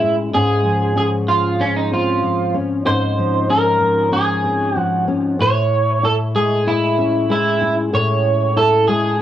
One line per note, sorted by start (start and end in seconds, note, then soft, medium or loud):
0.00 0.33 A2 medium
0.00 0.64 G#3 medium
0.00 0.33 C#4 soft
0.00 0.15 E4 medium
0.00 0.33 E4 medium
0.34 2.84 G#2 medium
0.34 0.95 C#4 medium
0.34 0.96 G#4 loud
0.64 1.27 F3 medium
0.95 1.59 C#4 medium
0.95 1.06 G#4 medium
1.28 2.21 F3 medium
1.28 1.61 F4 medium
1.60 2.54 C#4 medium
1.60 1.75 C#4 medium
1.76 1.91 D#4 medium
1.91 4.43 C4 medium
1.91 2.52 F4 medium
2.23 3.17 F3 medium
2.54 2.86 C#4 medium
2.85 5.39 G#2 medium
2.85 3.49 C#4 medium
2.85 3.50 C5 loud
3.18 3.80 F3 medium
3.49 4.12 C#4 medium
3.49 4.09 A#4 medium
3.81 4.75 F3 medium
4.12 5.07 C#4 medium
4.12 4.77 G#4 medium
4.44 5.46 C4 medium
4.76 5.46 F3 medium
4.76 5.04 F#4 medium
5.08 5.39 C#4 medium
5.39 7.92 A2 medium
5.39 6.02 E4 medium
5.39 6.04 C#5 loud
6.03 6.66 E4 medium
6.03 6.13 A4 loud
6.35 7.29 G#3 medium
6.35 6.68 G#4 medium
6.67 7.60 E4 medium
6.67 7.30 E4 medium
6.98 9.22 C#4 medium
7.29 8.88 G#3 medium
7.29 7.75 E4 medium
7.61 7.92 E4 medium
7.93 9.22 A2 medium
7.93 8.55 E4 medium
7.93 8.57 C#5 loud
8.56 9.19 E4 medium
8.56 8.87 A4 medium
8.88 9.22 G#3 medium
8.88 9.17 G#4 medium